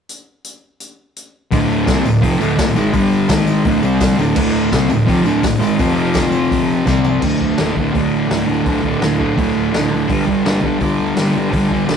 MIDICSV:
0, 0, Header, 1, 4, 480
1, 0, Start_track
1, 0, Key_signature, -1, "minor"
1, 0, Tempo, 357569
1, 118, Time_signature, 4, 2, 24, 8
1, 16067, End_track
2, 0, Start_track
2, 0, Title_t, "Distorted electric guitar"
2, 0, Program_c, 0, 30
2, 2029, Note_on_c, 0, 38, 93
2, 2046, Note_on_c, 0, 45, 105
2, 2053, Note_on_c, 0, 50, 102
2, 2503, Note_off_c, 0, 38, 0
2, 2512, Note_off_c, 0, 45, 0
2, 2514, Note_on_c, 0, 48, 89
2, 2515, Note_off_c, 0, 50, 0
2, 2526, Note_on_c, 0, 55, 93
2, 2544, Note_on_c, 0, 60, 95
2, 2745, Note_off_c, 0, 48, 0
2, 2752, Note_off_c, 0, 55, 0
2, 2756, Note_on_c, 0, 38, 63
2, 2760, Note_off_c, 0, 60, 0
2, 2764, Note_on_c, 0, 45, 67
2, 2945, Note_off_c, 0, 38, 0
2, 2950, Note_off_c, 0, 45, 0
2, 2975, Note_on_c, 0, 41, 93
2, 2989, Note_on_c, 0, 48, 102
2, 2997, Note_on_c, 0, 53, 105
2, 3209, Note_off_c, 0, 41, 0
2, 3214, Note_on_c, 0, 38, 99
2, 3222, Note_off_c, 0, 48, 0
2, 3226, Note_off_c, 0, 53, 0
2, 3227, Note_on_c, 0, 45, 97
2, 3239, Note_on_c, 0, 50, 101
2, 3444, Note_off_c, 0, 38, 0
2, 3449, Note_off_c, 0, 45, 0
2, 3460, Note_on_c, 0, 38, 64
2, 3465, Note_on_c, 0, 45, 75
2, 3467, Note_off_c, 0, 50, 0
2, 3657, Note_off_c, 0, 38, 0
2, 3660, Note_off_c, 0, 45, 0
2, 3701, Note_on_c, 0, 44, 89
2, 3722, Note_on_c, 0, 51, 100
2, 3732, Note_on_c, 0, 56, 112
2, 3938, Note_off_c, 0, 44, 0
2, 3945, Note_on_c, 0, 43, 91
2, 3949, Note_off_c, 0, 51, 0
2, 3953, Note_off_c, 0, 56, 0
2, 3955, Note_on_c, 0, 50, 103
2, 3971, Note_on_c, 0, 55, 111
2, 4408, Note_off_c, 0, 43, 0
2, 4413, Note_on_c, 0, 44, 81
2, 4423, Note_off_c, 0, 50, 0
2, 4429, Note_on_c, 0, 51, 94
2, 4432, Note_off_c, 0, 55, 0
2, 4445, Note_on_c, 0, 56, 96
2, 4890, Note_off_c, 0, 44, 0
2, 4896, Note_on_c, 0, 38, 100
2, 4901, Note_off_c, 0, 51, 0
2, 4908, Note_on_c, 0, 45, 105
2, 4909, Note_off_c, 0, 56, 0
2, 4921, Note_on_c, 0, 50, 95
2, 5117, Note_off_c, 0, 38, 0
2, 5123, Note_on_c, 0, 48, 96
2, 5132, Note_off_c, 0, 45, 0
2, 5138, Note_on_c, 0, 55, 113
2, 5147, Note_off_c, 0, 50, 0
2, 5153, Note_on_c, 0, 60, 94
2, 5605, Note_off_c, 0, 48, 0
2, 5610, Note_on_c, 0, 38, 81
2, 5614, Note_off_c, 0, 55, 0
2, 5619, Note_on_c, 0, 45, 94
2, 5623, Note_off_c, 0, 60, 0
2, 5631, Note_on_c, 0, 50, 107
2, 5824, Note_off_c, 0, 38, 0
2, 5841, Note_on_c, 0, 38, 79
2, 5843, Note_off_c, 0, 45, 0
2, 5857, Note_off_c, 0, 50, 0
2, 5859, Note_on_c, 0, 45, 105
2, 5873, Note_on_c, 0, 50, 111
2, 6327, Note_off_c, 0, 38, 0
2, 6336, Note_off_c, 0, 45, 0
2, 6340, Note_on_c, 0, 48, 86
2, 6343, Note_off_c, 0, 50, 0
2, 6356, Note_on_c, 0, 55, 97
2, 6363, Note_on_c, 0, 60, 98
2, 6572, Note_off_c, 0, 48, 0
2, 6575, Note_off_c, 0, 55, 0
2, 6577, Note_on_c, 0, 38, 64
2, 6580, Note_on_c, 0, 45, 71
2, 6588, Note_off_c, 0, 60, 0
2, 6775, Note_off_c, 0, 38, 0
2, 6776, Note_off_c, 0, 45, 0
2, 6806, Note_on_c, 0, 41, 93
2, 6821, Note_on_c, 0, 48, 90
2, 6836, Note_on_c, 0, 53, 110
2, 7042, Note_off_c, 0, 41, 0
2, 7047, Note_on_c, 0, 38, 101
2, 7050, Note_off_c, 0, 48, 0
2, 7056, Note_on_c, 0, 45, 107
2, 7064, Note_off_c, 0, 53, 0
2, 7069, Note_on_c, 0, 50, 107
2, 7267, Note_off_c, 0, 38, 0
2, 7274, Note_off_c, 0, 45, 0
2, 7283, Note_on_c, 0, 38, 62
2, 7290, Note_on_c, 0, 45, 75
2, 7301, Note_off_c, 0, 50, 0
2, 7487, Note_off_c, 0, 38, 0
2, 7491, Note_off_c, 0, 45, 0
2, 7508, Note_on_c, 0, 44, 77
2, 7526, Note_on_c, 0, 51, 83
2, 7539, Note_on_c, 0, 56, 96
2, 7754, Note_off_c, 0, 44, 0
2, 7760, Note_on_c, 0, 41, 98
2, 7770, Note_off_c, 0, 51, 0
2, 7776, Note_on_c, 0, 48, 115
2, 7777, Note_off_c, 0, 56, 0
2, 7785, Note_on_c, 0, 53, 104
2, 9197, Note_off_c, 0, 48, 0
2, 9208, Note_off_c, 0, 41, 0
2, 9213, Note_on_c, 0, 48, 99
2, 9221, Note_off_c, 0, 53, 0
2, 9222, Note_on_c, 0, 55, 99
2, 9241, Note_on_c, 0, 60, 107
2, 9676, Note_off_c, 0, 48, 0
2, 9682, Note_on_c, 0, 38, 78
2, 9700, Note_off_c, 0, 55, 0
2, 9709, Note_off_c, 0, 60, 0
2, 9718, Note_on_c, 0, 45, 92
2, 9748, Note_on_c, 0, 50, 94
2, 9925, Note_off_c, 0, 50, 0
2, 9930, Note_on_c, 0, 50, 70
2, 9976, Note_off_c, 0, 45, 0
2, 9992, Note_on_c, 0, 45, 54
2, 10150, Note_off_c, 0, 38, 0
2, 10156, Note_on_c, 0, 38, 70
2, 10172, Note_off_c, 0, 45, 0
2, 10189, Note_on_c, 0, 45, 69
2, 10211, Note_off_c, 0, 50, 0
2, 10216, Note_on_c, 0, 50, 76
2, 10398, Note_off_c, 0, 50, 0
2, 10403, Note_on_c, 0, 50, 63
2, 10455, Note_off_c, 0, 45, 0
2, 10471, Note_on_c, 0, 45, 55
2, 10628, Note_off_c, 0, 38, 0
2, 10633, Note_on_c, 0, 38, 87
2, 10654, Note_off_c, 0, 45, 0
2, 10670, Note_on_c, 0, 45, 87
2, 10682, Note_off_c, 0, 50, 0
2, 10698, Note_on_c, 0, 50, 89
2, 11102, Note_off_c, 0, 38, 0
2, 11118, Note_on_c, 0, 38, 66
2, 11143, Note_off_c, 0, 45, 0
2, 11159, Note_on_c, 0, 45, 80
2, 11168, Note_off_c, 0, 50, 0
2, 11184, Note_on_c, 0, 50, 75
2, 11339, Note_off_c, 0, 50, 0
2, 11355, Note_on_c, 0, 50, 69
2, 11404, Note_off_c, 0, 45, 0
2, 11420, Note_on_c, 0, 45, 56
2, 11577, Note_off_c, 0, 38, 0
2, 11593, Note_on_c, 0, 38, 85
2, 11618, Note_off_c, 0, 45, 0
2, 11634, Note_on_c, 0, 45, 84
2, 11646, Note_off_c, 0, 50, 0
2, 11662, Note_on_c, 0, 50, 104
2, 11826, Note_off_c, 0, 50, 0
2, 11842, Note_on_c, 0, 50, 64
2, 11890, Note_off_c, 0, 45, 0
2, 11906, Note_on_c, 0, 45, 55
2, 12075, Note_off_c, 0, 38, 0
2, 12091, Note_on_c, 0, 38, 63
2, 12114, Note_off_c, 0, 45, 0
2, 12130, Note_on_c, 0, 45, 79
2, 12136, Note_off_c, 0, 50, 0
2, 12152, Note_on_c, 0, 50, 80
2, 12314, Note_off_c, 0, 50, 0
2, 12330, Note_on_c, 0, 50, 63
2, 12380, Note_off_c, 0, 45, 0
2, 12396, Note_on_c, 0, 45, 59
2, 12541, Note_off_c, 0, 38, 0
2, 12558, Note_on_c, 0, 38, 85
2, 12571, Note_off_c, 0, 45, 0
2, 12587, Note_on_c, 0, 45, 105
2, 12601, Note_off_c, 0, 50, 0
2, 12617, Note_on_c, 0, 50, 101
2, 13036, Note_off_c, 0, 38, 0
2, 13052, Note_on_c, 0, 38, 66
2, 13075, Note_off_c, 0, 45, 0
2, 13091, Note_on_c, 0, 45, 72
2, 13098, Note_off_c, 0, 50, 0
2, 13114, Note_on_c, 0, 50, 93
2, 13272, Note_off_c, 0, 50, 0
2, 13289, Note_on_c, 0, 50, 69
2, 13347, Note_off_c, 0, 45, 0
2, 13364, Note_on_c, 0, 45, 58
2, 13521, Note_off_c, 0, 38, 0
2, 13526, Note_on_c, 0, 43, 99
2, 13529, Note_off_c, 0, 50, 0
2, 13555, Note_off_c, 0, 45, 0
2, 13561, Note_on_c, 0, 50, 96
2, 13593, Note_on_c, 0, 55, 111
2, 13768, Note_off_c, 0, 55, 0
2, 13773, Note_on_c, 0, 55, 76
2, 13822, Note_off_c, 0, 50, 0
2, 13838, Note_on_c, 0, 50, 60
2, 13999, Note_off_c, 0, 43, 0
2, 14004, Note_on_c, 0, 43, 62
2, 14029, Note_off_c, 0, 50, 0
2, 14045, Note_on_c, 0, 50, 68
2, 14063, Note_off_c, 0, 55, 0
2, 14069, Note_on_c, 0, 55, 76
2, 14239, Note_off_c, 0, 55, 0
2, 14245, Note_on_c, 0, 55, 64
2, 14291, Note_off_c, 0, 50, 0
2, 14307, Note_on_c, 0, 50, 55
2, 14473, Note_off_c, 0, 43, 0
2, 14478, Note_on_c, 0, 43, 84
2, 14502, Note_off_c, 0, 50, 0
2, 14518, Note_on_c, 0, 50, 102
2, 14535, Note_off_c, 0, 55, 0
2, 14551, Note_on_c, 0, 55, 102
2, 14946, Note_off_c, 0, 43, 0
2, 14962, Note_on_c, 0, 43, 71
2, 14983, Note_off_c, 0, 50, 0
2, 14999, Note_on_c, 0, 50, 67
2, 15014, Note_off_c, 0, 55, 0
2, 15030, Note_on_c, 0, 55, 83
2, 15179, Note_off_c, 0, 55, 0
2, 15195, Note_on_c, 0, 55, 59
2, 15249, Note_off_c, 0, 50, 0
2, 15265, Note_on_c, 0, 50, 54
2, 15429, Note_off_c, 0, 43, 0
2, 15446, Note_on_c, 0, 43, 78
2, 15468, Note_off_c, 0, 50, 0
2, 15485, Note_on_c, 0, 50, 97
2, 15499, Note_off_c, 0, 55, 0
2, 15515, Note_on_c, 0, 55, 98
2, 15675, Note_off_c, 0, 55, 0
2, 15691, Note_on_c, 0, 55, 75
2, 15737, Note_off_c, 0, 50, 0
2, 15753, Note_on_c, 0, 50, 57
2, 15903, Note_off_c, 0, 43, 0
2, 15919, Note_on_c, 0, 43, 74
2, 15946, Note_off_c, 0, 50, 0
2, 15962, Note_on_c, 0, 50, 80
2, 15975, Note_off_c, 0, 55, 0
2, 15991, Note_on_c, 0, 55, 68
2, 16067, Note_off_c, 0, 43, 0
2, 16067, Note_off_c, 0, 50, 0
2, 16067, Note_off_c, 0, 55, 0
2, 16067, End_track
3, 0, Start_track
3, 0, Title_t, "Picked electric bass"
3, 0, Program_c, 1, 34
3, 2039, Note_on_c, 1, 26, 95
3, 2482, Note_off_c, 1, 26, 0
3, 2514, Note_on_c, 1, 36, 104
3, 2736, Note_off_c, 1, 36, 0
3, 2757, Note_on_c, 1, 26, 88
3, 2977, Note_off_c, 1, 26, 0
3, 2992, Note_on_c, 1, 29, 94
3, 3215, Note_off_c, 1, 29, 0
3, 3235, Note_on_c, 1, 26, 96
3, 3456, Note_off_c, 1, 26, 0
3, 3465, Note_on_c, 1, 26, 87
3, 3690, Note_off_c, 1, 26, 0
3, 3715, Note_on_c, 1, 32, 101
3, 3936, Note_off_c, 1, 32, 0
3, 3941, Note_on_c, 1, 31, 108
3, 4391, Note_off_c, 1, 31, 0
3, 4419, Note_on_c, 1, 32, 99
3, 4870, Note_off_c, 1, 32, 0
3, 4902, Note_on_c, 1, 26, 105
3, 5128, Note_off_c, 1, 26, 0
3, 5148, Note_on_c, 1, 36, 96
3, 5594, Note_off_c, 1, 36, 0
3, 5614, Note_on_c, 1, 26, 91
3, 5844, Note_off_c, 1, 26, 0
3, 5856, Note_on_c, 1, 26, 106
3, 6308, Note_off_c, 1, 26, 0
3, 6346, Note_on_c, 1, 36, 95
3, 6570, Note_off_c, 1, 36, 0
3, 6588, Note_on_c, 1, 26, 86
3, 6811, Note_off_c, 1, 26, 0
3, 6818, Note_on_c, 1, 29, 97
3, 7046, Note_off_c, 1, 29, 0
3, 7058, Note_on_c, 1, 26, 94
3, 7286, Note_off_c, 1, 26, 0
3, 7294, Note_on_c, 1, 26, 98
3, 7524, Note_off_c, 1, 26, 0
3, 7534, Note_on_c, 1, 32, 88
3, 7764, Note_off_c, 1, 32, 0
3, 7778, Note_on_c, 1, 29, 106
3, 9171, Note_off_c, 1, 29, 0
3, 9219, Note_on_c, 1, 36, 98
3, 9671, Note_off_c, 1, 36, 0
3, 9695, Note_on_c, 1, 26, 103
3, 9862, Note_off_c, 1, 26, 0
3, 9940, Note_on_c, 1, 26, 88
3, 10106, Note_off_c, 1, 26, 0
3, 10190, Note_on_c, 1, 26, 92
3, 10352, Note_off_c, 1, 26, 0
3, 10422, Note_on_c, 1, 26, 79
3, 10587, Note_off_c, 1, 26, 0
3, 10666, Note_on_c, 1, 26, 91
3, 10830, Note_off_c, 1, 26, 0
3, 10885, Note_on_c, 1, 33, 89
3, 11056, Note_off_c, 1, 33, 0
3, 11137, Note_on_c, 1, 26, 90
3, 11305, Note_off_c, 1, 26, 0
3, 11383, Note_on_c, 1, 26, 77
3, 11548, Note_off_c, 1, 26, 0
3, 11622, Note_on_c, 1, 26, 95
3, 11788, Note_off_c, 1, 26, 0
3, 11859, Note_on_c, 1, 26, 95
3, 12026, Note_off_c, 1, 26, 0
3, 12112, Note_on_c, 1, 26, 96
3, 12436, Note_off_c, 1, 26, 0
3, 12587, Note_on_c, 1, 26, 87
3, 12752, Note_off_c, 1, 26, 0
3, 12833, Note_on_c, 1, 26, 79
3, 12996, Note_off_c, 1, 26, 0
3, 13072, Note_on_c, 1, 26, 92
3, 13235, Note_off_c, 1, 26, 0
3, 13317, Note_on_c, 1, 26, 84
3, 13479, Note_off_c, 1, 26, 0
3, 13549, Note_on_c, 1, 31, 100
3, 13714, Note_off_c, 1, 31, 0
3, 13789, Note_on_c, 1, 31, 86
3, 13953, Note_off_c, 1, 31, 0
3, 14030, Note_on_c, 1, 31, 93
3, 14194, Note_off_c, 1, 31, 0
3, 14268, Note_on_c, 1, 31, 87
3, 14433, Note_off_c, 1, 31, 0
3, 14507, Note_on_c, 1, 31, 99
3, 14672, Note_off_c, 1, 31, 0
3, 14765, Note_on_c, 1, 38, 80
3, 14924, Note_off_c, 1, 38, 0
3, 15005, Note_on_c, 1, 31, 90
3, 15164, Note_off_c, 1, 31, 0
3, 15237, Note_on_c, 1, 31, 87
3, 15398, Note_off_c, 1, 31, 0
3, 15476, Note_on_c, 1, 31, 97
3, 15637, Note_off_c, 1, 31, 0
3, 15712, Note_on_c, 1, 31, 91
3, 15875, Note_off_c, 1, 31, 0
3, 15955, Note_on_c, 1, 31, 89
3, 16067, Note_off_c, 1, 31, 0
3, 16067, End_track
4, 0, Start_track
4, 0, Title_t, "Drums"
4, 122, Note_on_c, 9, 42, 68
4, 256, Note_off_c, 9, 42, 0
4, 596, Note_on_c, 9, 42, 65
4, 731, Note_off_c, 9, 42, 0
4, 1076, Note_on_c, 9, 42, 59
4, 1210, Note_off_c, 9, 42, 0
4, 1563, Note_on_c, 9, 42, 60
4, 1697, Note_off_c, 9, 42, 0
4, 2038, Note_on_c, 9, 46, 61
4, 2039, Note_on_c, 9, 54, 64
4, 2042, Note_on_c, 9, 36, 115
4, 2172, Note_off_c, 9, 46, 0
4, 2173, Note_off_c, 9, 54, 0
4, 2176, Note_off_c, 9, 36, 0
4, 2280, Note_on_c, 9, 54, 28
4, 2414, Note_off_c, 9, 54, 0
4, 2513, Note_on_c, 9, 54, 88
4, 2518, Note_on_c, 9, 36, 110
4, 2520, Note_on_c, 9, 46, 58
4, 2525, Note_on_c, 9, 38, 109
4, 2647, Note_off_c, 9, 54, 0
4, 2653, Note_off_c, 9, 36, 0
4, 2654, Note_off_c, 9, 46, 0
4, 2660, Note_off_c, 9, 38, 0
4, 2759, Note_on_c, 9, 54, 81
4, 2894, Note_off_c, 9, 54, 0
4, 2996, Note_on_c, 9, 46, 63
4, 2998, Note_on_c, 9, 36, 102
4, 3130, Note_off_c, 9, 46, 0
4, 3132, Note_off_c, 9, 36, 0
4, 3232, Note_on_c, 9, 54, 75
4, 3366, Note_off_c, 9, 54, 0
4, 3470, Note_on_c, 9, 46, 61
4, 3471, Note_on_c, 9, 36, 116
4, 3476, Note_on_c, 9, 38, 125
4, 3481, Note_on_c, 9, 54, 91
4, 3605, Note_off_c, 9, 36, 0
4, 3605, Note_off_c, 9, 46, 0
4, 3610, Note_off_c, 9, 38, 0
4, 3615, Note_off_c, 9, 54, 0
4, 3707, Note_on_c, 9, 54, 80
4, 3841, Note_off_c, 9, 54, 0
4, 3936, Note_on_c, 9, 46, 69
4, 3947, Note_on_c, 9, 36, 120
4, 3951, Note_on_c, 9, 54, 70
4, 4071, Note_off_c, 9, 46, 0
4, 4082, Note_off_c, 9, 36, 0
4, 4086, Note_off_c, 9, 54, 0
4, 4193, Note_on_c, 9, 54, 28
4, 4327, Note_off_c, 9, 54, 0
4, 4415, Note_on_c, 9, 54, 103
4, 4420, Note_on_c, 9, 46, 63
4, 4424, Note_on_c, 9, 36, 99
4, 4426, Note_on_c, 9, 38, 122
4, 4549, Note_off_c, 9, 54, 0
4, 4555, Note_off_c, 9, 46, 0
4, 4558, Note_off_c, 9, 36, 0
4, 4560, Note_off_c, 9, 38, 0
4, 4658, Note_on_c, 9, 54, 85
4, 4792, Note_off_c, 9, 54, 0
4, 4898, Note_on_c, 9, 46, 50
4, 4904, Note_on_c, 9, 36, 110
4, 5033, Note_off_c, 9, 46, 0
4, 5039, Note_off_c, 9, 36, 0
4, 5136, Note_on_c, 9, 54, 74
4, 5271, Note_off_c, 9, 54, 0
4, 5374, Note_on_c, 9, 54, 100
4, 5379, Note_on_c, 9, 46, 59
4, 5381, Note_on_c, 9, 36, 115
4, 5385, Note_on_c, 9, 38, 109
4, 5508, Note_off_c, 9, 54, 0
4, 5513, Note_off_c, 9, 46, 0
4, 5515, Note_off_c, 9, 36, 0
4, 5519, Note_off_c, 9, 38, 0
4, 5624, Note_on_c, 9, 54, 78
4, 5758, Note_off_c, 9, 54, 0
4, 5851, Note_on_c, 9, 49, 110
4, 5861, Note_on_c, 9, 36, 126
4, 5874, Note_on_c, 9, 54, 73
4, 5985, Note_off_c, 9, 49, 0
4, 5996, Note_off_c, 9, 36, 0
4, 6008, Note_off_c, 9, 54, 0
4, 6128, Note_on_c, 9, 54, 26
4, 6262, Note_off_c, 9, 54, 0
4, 6340, Note_on_c, 9, 46, 54
4, 6343, Note_on_c, 9, 36, 114
4, 6346, Note_on_c, 9, 38, 105
4, 6352, Note_on_c, 9, 54, 91
4, 6475, Note_off_c, 9, 46, 0
4, 6478, Note_off_c, 9, 36, 0
4, 6480, Note_off_c, 9, 38, 0
4, 6486, Note_off_c, 9, 54, 0
4, 6573, Note_on_c, 9, 54, 84
4, 6707, Note_off_c, 9, 54, 0
4, 6823, Note_on_c, 9, 36, 107
4, 6825, Note_on_c, 9, 46, 58
4, 6958, Note_off_c, 9, 36, 0
4, 6959, Note_off_c, 9, 46, 0
4, 7057, Note_on_c, 9, 54, 82
4, 7191, Note_off_c, 9, 54, 0
4, 7293, Note_on_c, 9, 54, 102
4, 7299, Note_on_c, 9, 46, 70
4, 7303, Note_on_c, 9, 36, 115
4, 7305, Note_on_c, 9, 38, 116
4, 7427, Note_off_c, 9, 54, 0
4, 7433, Note_off_c, 9, 46, 0
4, 7437, Note_off_c, 9, 36, 0
4, 7439, Note_off_c, 9, 38, 0
4, 7545, Note_on_c, 9, 54, 79
4, 7679, Note_off_c, 9, 54, 0
4, 7774, Note_on_c, 9, 46, 71
4, 7774, Note_on_c, 9, 54, 75
4, 7780, Note_on_c, 9, 36, 116
4, 7908, Note_off_c, 9, 46, 0
4, 7908, Note_off_c, 9, 54, 0
4, 7914, Note_off_c, 9, 36, 0
4, 8240, Note_on_c, 9, 54, 99
4, 8249, Note_on_c, 9, 46, 56
4, 8255, Note_on_c, 9, 38, 109
4, 8260, Note_on_c, 9, 36, 104
4, 8375, Note_off_c, 9, 54, 0
4, 8384, Note_off_c, 9, 46, 0
4, 8389, Note_off_c, 9, 38, 0
4, 8394, Note_off_c, 9, 36, 0
4, 8481, Note_on_c, 9, 54, 84
4, 8615, Note_off_c, 9, 54, 0
4, 8734, Note_on_c, 9, 54, 31
4, 8746, Note_on_c, 9, 36, 101
4, 8748, Note_on_c, 9, 46, 55
4, 8869, Note_off_c, 9, 54, 0
4, 8880, Note_off_c, 9, 36, 0
4, 8883, Note_off_c, 9, 46, 0
4, 9220, Note_on_c, 9, 54, 102
4, 9221, Note_on_c, 9, 38, 63
4, 9224, Note_on_c, 9, 36, 116
4, 9354, Note_off_c, 9, 54, 0
4, 9356, Note_off_c, 9, 38, 0
4, 9358, Note_off_c, 9, 36, 0
4, 9456, Note_on_c, 9, 54, 65
4, 9458, Note_on_c, 9, 43, 90
4, 9590, Note_off_c, 9, 54, 0
4, 9592, Note_off_c, 9, 43, 0
4, 9692, Note_on_c, 9, 57, 104
4, 9702, Note_on_c, 9, 36, 114
4, 9827, Note_off_c, 9, 57, 0
4, 9836, Note_off_c, 9, 36, 0
4, 9942, Note_on_c, 9, 36, 73
4, 10076, Note_off_c, 9, 36, 0
4, 10170, Note_on_c, 9, 46, 53
4, 10176, Note_on_c, 9, 38, 112
4, 10304, Note_off_c, 9, 46, 0
4, 10310, Note_off_c, 9, 38, 0
4, 10422, Note_on_c, 9, 36, 76
4, 10556, Note_off_c, 9, 36, 0
4, 10667, Note_on_c, 9, 36, 98
4, 10667, Note_on_c, 9, 46, 48
4, 10801, Note_off_c, 9, 36, 0
4, 10802, Note_off_c, 9, 46, 0
4, 11149, Note_on_c, 9, 46, 60
4, 11154, Note_on_c, 9, 38, 106
4, 11283, Note_off_c, 9, 46, 0
4, 11288, Note_off_c, 9, 38, 0
4, 11624, Note_on_c, 9, 46, 58
4, 11625, Note_on_c, 9, 36, 124
4, 11758, Note_off_c, 9, 46, 0
4, 11759, Note_off_c, 9, 36, 0
4, 11865, Note_on_c, 9, 36, 77
4, 12000, Note_off_c, 9, 36, 0
4, 12104, Note_on_c, 9, 46, 47
4, 12109, Note_on_c, 9, 38, 98
4, 12238, Note_off_c, 9, 46, 0
4, 12243, Note_off_c, 9, 38, 0
4, 12351, Note_on_c, 9, 36, 74
4, 12485, Note_off_c, 9, 36, 0
4, 12589, Note_on_c, 9, 36, 107
4, 12594, Note_on_c, 9, 46, 50
4, 12724, Note_off_c, 9, 36, 0
4, 12728, Note_off_c, 9, 46, 0
4, 13075, Note_on_c, 9, 46, 54
4, 13081, Note_on_c, 9, 38, 106
4, 13210, Note_off_c, 9, 46, 0
4, 13215, Note_off_c, 9, 38, 0
4, 13549, Note_on_c, 9, 46, 55
4, 13552, Note_on_c, 9, 36, 127
4, 13683, Note_off_c, 9, 46, 0
4, 13686, Note_off_c, 9, 36, 0
4, 13794, Note_on_c, 9, 36, 79
4, 13928, Note_off_c, 9, 36, 0
4, 14037, Note_on_c, 9, 46, 50
4, 14042, Note_on_c, 9, 38, 106
4, 14171, Note_off_c, 9, 46, 0
4, 14176, Note_off_c, 9, 38, 0
4, 14273, Note_on_c, 9, 36, 76
4, 14407, Note_off_c, 9, 36, 0
4, 14503, Note_on_c, 9, 46, 51
4, 14513, Note_on_c, 9, 36, 91
4, 14637, Note_off_c, 9, 46, 0
4, 14647, Note_off_c, 9, 36, 0
4, 14988, Note_on_c, 9, 46, 58
4, 14993, Note_on_c, 9, 38, 114
4, 15122, Note_off_c, 9, 46, 0
4, 15127, Note_off_c, 9, 38, 0
4, 15476, Note_on_c, 9, 36, 106
4, 15479, Note_on_c, 9, 46, 62
4, 15611, Note_off_c, 9, 36, 0
4, 15614, Note_off_c, 9, 46, 0
4, 15715, Note_on_c, 9, 36, 75
4, 15850, Note_off_c, 9, 36, 0
4, 15954, Note_on_c, 9, 46, 52
4, 15959, Note_on_c, 9, 38, 100
4, 16067, Note_off_c, 9, 38, 0
4, 16067, Note_off_c, 9, 46, 0
4, 16067, End_track
0, 0, End_of_file